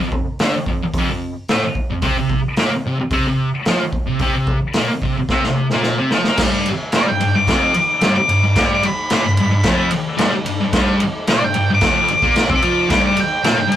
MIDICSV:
0, 0, Header, 1, 5, 480
1, 0, Start_track
1, 0, Tempo, 543971
1, 1790, Time_signature, 4, 2, 24, 8
1, 12144, End_track
2, 0, Start_track
2, 0, Title_t, "Lead electric guitar"
2, 0, Program_c, 0, 29
2, 6139, Note_on_c, 0, 74, 100
2, 6228, Note_on_c, 0, 79, 94
2, 6243, Note_off_c, 0, 74, 0
2, 6463, Note_off_c, 0, 79, 0
2, 6490, Note_on_c, 0, 86, 78
2, 7180, Note_off_c, 0, 86, 0
2, 7199, Note_on_c, 0, 86, 91
2, 7661, Note_off_c, 0, 86, 0
2, 7717, Note_on_c, 0, 86, 96
2, 7812, Note_off_c, 0, 86, 0
2, 7822, Note_on_c, 0, 83, 102
2, 8737, Note_off_c, 0, 83, 0
2, 9995, Note_on_c, 0, 74, 116
2, 10088, Note_off_c, 0, 74, 0
2, 10096, Note_on_c, 0, 79, 113
2, 10315, Note_off_c, 0, 79, 0
2, 10364, Note_on_c, 0, 86, 91
2, 11034, Note_off_c, 0, 86, 0
2, 11080, Note_on_c, 0, 86, 103
2, 11518, Note_off_c, 0, 86, 0
2, 11535, Note_on_c, 0, 86, 95
2, 11637, Note_off_c, 0, 86, 0
2, 11650, Note_on_c, 0, 79, 104
2, 12144, Note_off_c, 0, 79, 0
2, 12144, End_track
3, 0, Start_track
3, 0, Title_t, "Distorted electric guitar"
3, 0, Program_c, 1, 30
3, 14, Note_on_c, 1, 41, 72
3, 193, Note_off_c, 1, 41, 0
3, 358, Note_on_c, 1, 50, 86
3, 367, Note_on_c, 1, 62, 99
3, 465, Note_off_c, 1, 50, 0
3, 470, Note_off_c, 1, 62, 0
3, 601, Note_on_c, 1, 41, 63
3, 714, Note_off_c, 1, 41, 0
3, 864, Note_on_c, 1, 41, 87
3, 870, Note_on_c, 1, 53, 106
3, 959, Note_off_c, 1, 41, 0
3, 962, Note_off_c, 1, 53, 0
3, 975, Note_on_c, 1, 41, 72
3, 1154, Note_off_c, 1, 41, 0
3, 1323, Note_on_c, 1, 45, 85
3, 1333, Note_on_c, 1, 57, 98
3, 1429, Note_off_c, 1, 45, 0
3, 1434, Note_off_c, 1, 57, 0
3, 1683, Note_on_c, 1, 41, 72
3, 1788, Note_on_c, 1, 48, 87
3, 1789, Note_on_c, 1, 60, 105
3, 1796, Note_off_c, 1, 41, 0
3, 1901, Note_off_c, 1, 48, 0
3, 1902, Note_off_c, 1, 60, 0
3, 1930, Note_on_c, 1, 48, 78
3, 2112, Note_off_c, 1, 48, 0
3, 2273, Note_on_c, 1, 46, 87
3, 2282, Note_on_c, 1, 58, 98
3, 2385, Note_off_c, 1, 46, 0
3, 2389, Note_off_c, 1, 58, 0
3, 2530, Note_on_c, 1, 48, 67
3, 2634, Note_off_c, 1, 48, 0
3, 2757, Note_on_c, 1, 48, 97
3, 2763, Note_on_c, 1, 60, 96
3, 2867, Note_off_c, 1, 48, 0
3, 2870, Note_off_c, 1, 60, 0
3, 2888, Note_on_c, 1, 48, 74
3, 3072, Note_off_c, 1, 48, 0
3, 3242, Note_on_c, 1, 53, 94
3, 3247, Note_on_c, 1, 65, 93
3, 3350, Note_off_c, 1, 53, 0
3, 3352, Note_off_c, 1, 65, 0
3, 3591, Note_on_c, 1, 48, 73
3, 3706, Note_off_c, 1, 48, 0
3, 3717, Note_on_c, 1, 48, 86
3, 3725, Note_on_c, 1, 60, 96
3, 3824, Note_off_c, 1, 48, 0
3, 3832, Note_off_c, 1, 60, 0
3, 3835, Note_on_c, 1, 48, 74
3, 4026, Note_off_c, 1, 48, 0
3, 4201, Note_on_c, 1, 46, 89
3, 4210, Note_on_c, 1, 58, 98
3, 4310, Note_off_c, 1, 46, 0
3, 4315, Note_off_c, 1, 58, 0
3, 4442, Note_on_c, 1, 48, 68
3, 4558, Note_off_c, 1, 48, 0
3, 4685, Note_on_c, 1, 48, 90
3, 4688, Note_on_c, 1, 60, 96
3, 4792, Note_off_c, 1, 48, 0
3, 4794, Note_off_c, 1, 60, 0
3, 4816, Note_on_c, 1, 48, 68
3, 4997, Note_off_c, 1, 48, 0
3, 5058, Note_on_c, 1, 46, 88
3, 5061, Note_on_c, 1, 58, 93
3, 5279, Note_off_c, 1, 46, 0
3, 5280, Note_off_c, 1, 58, 0
3, 5289, Note_on_c, 1, 48, 92
3, 5296, Note_on_c, 1, 60, 101
3, 5394, Note_off_c, 1, 48, 0
3, 5398, Note_off_c, 1, 60, 0
3, 5407, Note_on_c, 1, 53, 91
3, 5415, Note_on_c, 1, 65, 95
3, 5513, Note_off_c, 1, 53, 0
3, 5517, Note_off_c, 1, 65, 0
3, 5544, Note_on_c, 1, 58, 80
3, 5547, Note_on_c, 1, 70, 94
3, 5642, Note_off_c, 1, 58, 0
3, 5643, Note_off_c, 1, 70, 0
3, 5663, Note_on_c, 1, 43, 85
3, 5666, Note_on_c, 1, 55, 106
3, 5881, Note_off_c, 1, 43, 0
3, 5883, Note_off_c, 1, 55, 0
3, 6136, Note_on_c, 1, 46, 92
3, 6139, Note_on_c, 1, 58, 98
3, 6238, Note_off_c, 1, 46, 0
3, 6239, Note_off_c, 1, 58, 0
3, 6260, Note_on_c, 1, 43, 70
3, 6345, Note_off_c, 1, 43, 0
3, 6355, Note_on_c, 1, 43, 67
3, 6474, Note_off_c, 1, 43, 0
3, 6484, Note_on_c, 1, 43, 72
3, 6597, Note_off_c, 1, 43, 0
3, 6601, Note_on_c, 1, 41, 100
3, 6609, Note_on_c, 1, 53, 112
3, 6830, Note_off_c, 1, 41, 0
3, 6834, Note_off_c, 1, 53, 0
3, 7074, Note_on_c, 1, 43, 95
3, 7084, Note_on_c, 1, 55, 96
3, 7182, Note_off_c, 1, 43, 0
3, 7191, Note_off_c, 1, 55, 0
3, 7317, Note_on_c, 1, 43, 71
3, 7430, Note_off_c, 1, 43, 0
3, 7441, Note_on_c, 1, 43, 75
3, 7547, Note_off_c, 1, 43, 0
3, 7557, Note_on_c, 1, 43, 96
3, 7565, Note_on_c, 1, 55, 104
3, 7787, Note_off_c, 1, 43, 0
3, 7791, Note_off_c, 1, 55, 0
3, 8044, Note_on_c, 1, 46, 94
3, 8052, Note_on_c, 1, 58, 102
3, 8150, Note_off_c, 1, 46, 0
3, 8155, Note_off_c, 1, 58, 0
3, 8160, Note_on_c, 1, 43, 75
3, 8275, Note_off_c, 1, 43, 0
3, 8296, Note_on_c, 1, 43, 74
3, 8382, Note_off_c, 1, 43, 0
3, 8393, Note_on_c, 1, 43, 76
3, 8506, Note_off_c, 1, 43, 0
3, 8510, Note_on_c, 1, 41, 88
3, 8517, Note_on_c, 1, 53, 100
3, 8743, Note_off_c, 1, 41, 0
3, 8746, Note_off_c, 1, 53, 0
3, 8973, Note_on_c, 1, 43, 99
3, 8982, Note_on_c, 1, 55, 104
3, 9085, Note_off_c, 1, 43, 0
3, 9099, Note_off_c, 1, 55, 0
3, 9220, Note_on_c, 1, 43, 78
3, 9345, Note_off_c, 1, 43, 0
3, 9357, Note_on_c, 1, 43, 78
3, 9456, Note_off_c, 1, 43, 0
3, 9467, Note_on_c, 1, 43, 93
3, 9475, Note_on_c, 1, 55, 97
3, 9700, Note_off_c, 1, 43, 0
3, 9704, Note_off_c, 1, 55, 0
3, 9952, Note_on_c, 1, 46, 88
3, 9962, Note_on_c, 1, 58, 101
3, 10063, Note_off_c, 1, 46, 0
3, 10067, Note_off_c, 1, 58, 0
3, 10073, Note_on_c, 1, 43, 69
3, 10179, Note_off_c, 1, 43, 0
3, 10189, Note_on_c, 1, 43, 76
3, 10308, Note_off_c, 1, 43, 0
3, 10325, Note_on_c, 1, 43, 72
3, 10427, Note_off_c, 1, 43, 0
3, 10430, Note_on_c, 1, 41, 93
3, 10436, Note_on_c, 1, 53, 103
3, 10661, Note_off_c, 1, 41, 0
3, 10664, Note_off_c, 1, 53, 0
3, 10791, Note_on_c, 1, 46, 91
3, 10794, Note_on_c, 1, 58, 110
3, 11021, Note_off_c, 1, 46, 0
3, 11023, Note_off_c, 1, 58, 0
3, 11025, Note_on_c, 1, 48, 92
3, 11031, Note_on_c, 1, 60, 112
3, 11138, Note_off_c, 1, 48, 0
3, 11141, Note_off_c, 1, 60, 0
3, 11144, Note_on_c, 1, 53, 91
3, 11151, Note_on_c, 1, 65, 93
3, 11366, Note_on_c, 1, 43, 92
3, 11375, Note_on_c, 1, 55, 97
3, 11377, Note_off_c, 1, 53, 0
3, 11381, Note_off_c, 1, 65, 0
3, 11608, Note_off_c, 1, 43, 0
3, 11613, Note_off_c, 1, 55, 0
3, 11858, Note_on_c, 1, 46, 83
3, 11864, Note_on_c, 1, 58, 103
3, 11969, Note_on_c, 1, 43, 71
3, 11974, Note_off_c, 1, 46, 0
3, 11977, Note_off_c, 1, 58, 0
3, 12060, Note_off_c, 1, 43, 0
3, 12071, Note_on_c, 1, 43, 73
3, 12144, Note_off_c, 1, 43, 0
3, 12144, End_track
4, 0, Start_track
4, 0, Title_t, "Muted distorted electric guitar strokes"
4, 489, Note_on_c, 9, 29, 57
4, 577, Note_off_c, 9, 29, 0
4, 733, Note_on_c, 9, 29, 53
4, 822, Note_off_c, 9, 29, 0
4, 1446, Note_on_c, 9, 29, 58
4, 1534, Note_off_c, 9, 29, 0
4, 2391, Note_on_c, 9, 29, 56
4, 2479, Note_off_c, 9, 29, 0
4, 2644, Note_on_c, 9, 29, 56
4, 2733, Note_off_c, 9, 29, 0
4, 3361, Note_on_c, 9, 29, 62
4, 3449, Note_off_c, 9, 29, 0
4, 4316, Note_on_c, 9, 29, 54
4, 4404, Note_off_c, 9, 29, 0
4, 4570, Note_on_c, 9, 29, 56
4, 4658, Note_off_c, 9, 29, 0
4, 5904, Note_on_c, 9, 29, 63
4, 5992, Note_off_c, 9, 29, 0
4, 6839, Note_on_c, 9, 29, 63
4, 6928, Note_off_c, 9, 29, 0
4, 7192, Note_on_c, 9, 29, 62
4, 7281, Note_off_c, 9, 29, 0
4, 7797, Note_on_c, 9, 29, 62
4, 7885, Note_off_c, 9, 29, 0
4, 8754, Note_on_c, 9, 29, 64
4, 8842, Note_off_c, 9, 29, 0
4, 9096, Note_on_c, 9, 29, 63
4, 9184, Note_off_c, 9, 29, 0
4, 9724, Note_on_c, 9, 29, 63
4, 9812, Note_off_c, 9, 29, 0
4, 10685, Note_on_c, 9, 29, 62
4, 10773, Note_off_c, 9, 29, 0
4, 11617, Note_on_c, 9, 29, 69
4, 11705, Note_off_c, 9, 29, 0
4, 12144, End_track
5, 0, Start_track
5, 0, Title_t, "Drums"
5, 104, Note_on_c, 9, 36, 89
5, 193, Note_off_c, 9, 36, 0
5, 346, Note_on_c, 9, 46, 60
5, 353, Note_on_c, 9, 38, 119
5, 434, Note_off_c, 9, 46, 0
5, 442, Note_off_c, 9, 38, 0
5, 586, Note_on_c, 9, 36, 77
5, 674, Note_off_c, 9, 36, 0
5, 826, Note_on_c, 9, 36, 99
5, 827, Note_on_c, 9, 46, 55
5, 914, Note_off_c, 9, 36, 0
5, 915, Note_off_c, 9, 46, 0
5, 1310, Note_on_c, 9, 46, 49
5, 1317, Note_on_c, 9, 38, 104
5, 1399, Note_off_c, 9, 46, 0
5, 1406, Note_off_c, 9, 38, 0
5, 1546, Note_on_c, 9, 36, 75
5, 1634, Note_off_c, 9, 36, 0
5, 1782, Note_on_c, 9, 46, 55
5, 1785, Note_on_c, 9, 36, 116
5, 1870, Note_off_c, 9, 46, 0
5, 1874, Note_off_c, 9, 36, 0
5, 2025, Note_on_c, 9, 36, 89
5, 2113, Note_off_c, 9, 36, 0
5, 2264, Note_on_c, 9, 46, 53
5, 2271, Note_on_c, 9, 38, 113
5, 2352, Note_off_c, 9, 46, 0
5, 2359, Note_off_c, 9, 38, 0
5, 2741, Note_on_c, 9, 46, 52
5, 2742, Note_on_c, 9, 36, 106
5, 2829, Note_off_c, 9, 46, 0
5, 2831, Note_off_c, 9, 36, 0
5, 3224, Note_on_c, 9, 46, 50
5, 3231, Note_on_c, 9, 38, 103
5, 3312, Note_off_c, 9, 46, 0
5, 3320, Note_off_c, 9, 38, 0
5, 3464, Note_on_c, 9, 36, 77
5, 3552, Note_off_c, 9, 36, 0
5, 3700, Note_on_c, 9, 46, 53
5, 3704, Note_on_c, 9, 36, 103
5, 3788, Note_off_c, 9, 46, 0
5, 3792, Note_off_c, 9, 36, 0
5, 3944, Note_on_c, 9, 36, 91
5, 4032, Note_off_c, 9, 36, 0
5, 4178, Note_on_c, 9, 46, 61
5, 4185, Note_on_c, 9, 38, 105
5, 4266, Note_off_c, 9, 46, 0
5, 4273, Note_off_c, 9, 38, 0
5, 4427, Note_on_c, 9, 36, 76
5, 4515, Note_off_c, 9, 36, 0
5, 4665, Note_on_c, 9, 36, 97
5, 4666, Note_on_c, 9, 38, 57
5, 4754, Note_off_c, 9, 36, 0
5, 4755, Note_off_c, 9, 38, 0
5, 4797, Note_on_c, 9, 38, 51
5, 4885, Note_off_c, 9, 38, 0
5, 5028, Note_on_c, 9, 38, 56
5, 5117, Note_off_c, 9, 38, 0
5, 5146, Note_on_c, 9, 38, 73
5, 5234, Note_off_c, 9, 38, 0
5, 5390, Note_on_c, 9, 38, 86
5, 5478, Note_off_c, 9, 38, 0
5, 5510, Note_on_c, 9, 38, 77
5, 5598, Note_off_c, 9, 38, 0
5, 5625, Note_on_c, 9, 49, 116
5, 5629, Note_on_c, 9, 36, 109
5, 5632, Note_on_c, 9, 38, 114
5, 5713, Note_off_c, 9, 49, 0
5, 5718, Note_off_c, 9, 36, 0
5, 5720, Note_off_c, 9, 38, 0
5, 5874, Note_on_c, 9, 51, 77
5, 5963, Note_off_c, 9, 51, 0
5, 6107, Note_on_c, 9, 51, 97
5, 6114, Note_on_c, 9, 38, 125
5, 6196, Note_off_c, 9, 51, 0
5, 6203, Note_off_c, 9, 38, 0
5, 6358, Note_on_c, 9, 51, 72
5, 6446, Note_off_c, 9, 51, 0
5, 6595, Note_on_c, 9, 36, 99
5, 6599, Note_on_c, 9, 51, 90
5, 6606, Note_on_c, 9, 38, 106
5, 6683, Note_off_c, 9, 36, 0
5, 6688, Note_off_c, 9, 51, 0
5, 6695, Note_off_c, 9, 38, 0
5, 6832, Note_on_c, 9, 51, 74
5, 6921, Note_off_c, 9, 51, 0
5, 7070, Note_on_c, 9, 51, 91
5, 7077, Note_on_c, 9, 38, 102
5, 7159, Note_off_c, 9, 51, 0
5, 7166, Note_off_c, 9, 38, 0
5, 7315, Note_on_c, 9, 51, 75
5, 7403, Note_off_c, 9, 51, 0
5, 7551, Note_on_c, 9, 36, 114
5, 7551, Note_on_c, 9, 51, 104
5, 7558, Note_on_c, 9, 38, 123
5, 7639, Note_off_c, 9, 36, 0
5, 7639, Note_off_c, 9, 51, 0
5, 7646, Note_off_c, 9, 38, 0
5, 7794, Note_on_c, 9, 51, 80
5, 7882, Note_off_c, 9, 51, 0
5, 8029, Note_on_c, 9, 51, 109
5, 8036, Note_on_c, 9, 38, 124
5, 8118, Note_off_c, 9, 51, 0
5, 8125, Note_off_c, 9, 38, 0
5, 8269, Note_on_c, 9, 51, 81
5, 8358, Note_off_c, 9, 51, 0
5, 8502, Note_on_c, 9, 51, 97
5, 8507, Note_on_c, 9, 36, 99
5, 8509, Note_on_c, 9, 38, 114
5, 8591, Note_off_c, 9, 51, 0
5, 8595, Note_off_c, 9, 36, 0
5, 8598, Note_off_c, 9, 38, 0
5, 8742, Note_on_c, 9, 51, 80
5, 8830, Note_off_c, 9, 51, 0
5, 8987, Note_on_c, 9, 51, 99
5, 8994, Note_on_c, 9, 38, 112
5, 9075, Note_off_c, 9, 51, 0
5, 9082, Note_off_c, 9, 38, 0
5, 9228, Note_on_c, 9, 51, 79
5, 9316, Note_off_c, 9, 51, 0
5, 9467, Note_on_c, 9, 51, 104
5, 9468, Note_on_c, 9, 36, 114
5, 9474, Note_on_c, 9, 38, 110
5, 9556, Note_off_c, 9, 36, 0
5, 9556, Note_off_c, 9, 51, 0
5, 9563, Note_off_c, 9, 38, 0
5, 9707, Note_on_c, 9, 51, 77
5, 9795, Note_off_c, 9, 51, 0
5, 9948, Note_on_c, 9, 51, 103
5, 9955, Note_on_c, 9, 38, 121
5, 10036, Note_off_c, 9, 51, 0
5, 10043, Note_off_c, 9, 38, 0
5, 10182, Note_on_c, 9, 51, 70
5, 10271, Note_off_c, 9, 51, 0
5, 10421, Note_on_c, 9, 51, 94
5, 10425, Note_on_c, 9, 36, 105
5, 10428, Note_on_c, 9, 38, 109
5, 10510, Note_off_c, 9, 51, 0
5, 10513, Note_off_c, 9, 36, 0
5, 10517, Note_off_c, 9, 38, 0
5, 10662, Note_on_c, 9, 51, 67
5, 10750, Note_off_c, 9, 51, 0
5, 10786, Note_on_c, 9, 36, 96
5, 10874, Note_off_c, 9, 36, 0
5, 10903, Note_on_c, 9, 51, 90
5, 10911, Note_on_c, 9, 38, 106
5, 10992, Note_off_c, 9, 51, 0
5, 10999, Note_off_c, 9, 38, 0
5, 11025, Note_on_c, 9, 36, 116
5, 11114, Note_off_c, 9, 36, 0
5, 11140, Note_on_c, 9, 51, 74
5, 11228, Note_off_c, 9, 51, 0
5, 11384, Note_on_c, 9, 36, 117
5, 11384, Note_on_c, 9, 51, 104
5, 11392, Note_on_c, 9, 38, 115
5, 11473, Note_off_c, 9, 36, 0
5, 11473, Note_off_c, 9, 51, 0
5, 11480, Note_off_c, 9, 38, 0
5, 11618, Note_on_c, 9, 51, 87
5, 11706, Note_off_c, 9, 51, 0
5, 11862, Note_on_c, 9, 51, 109
5, 11869, Note_on_c, 9, 38, 127
5, 11950, Note_off_c, 9, 51, 0
5, 11957, Note_off_c, 9, 38, 0
5, 12104, Note_on_c, 9, 51, 75
5, 12144, Note_off_c, 9, 51, 0
5, 12144, End_track
0, 0, End_of_file